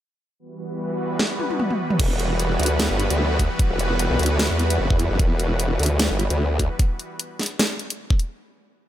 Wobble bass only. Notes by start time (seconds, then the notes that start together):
2.00 E1
2.59 D2
2.90 G1
3.10 D2
3.70 E1
4.10 B1
4.19 D2
4.50 E2
4.79 F#1
4.90 E2
5.10 F#1
5.20 E1
5.80 D2
6.11 G1
6.30 D2